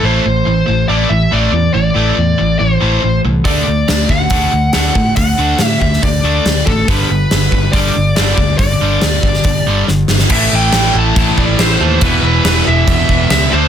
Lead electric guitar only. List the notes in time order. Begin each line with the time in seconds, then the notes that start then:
0.05 C5
0.88 D5
1.09 E5
1.33 D5
1.74 D5
2.59 C5
3.45 D5
4.10 F#5
4.73 F#5
5.16 F#5
5.67 E5
5.81 E5
6.03 D5
6.66 A4
6.88 B4
7.72 D5
8.16 D5
8.58 D5
10.33 E5
10.55 G5
10.99 A5
11.19 A5
11.39 D5
11.60 C5
12.03 B4
12.23 B4
12.46 B4
12.68 E5
13.31 E5
13.53 C5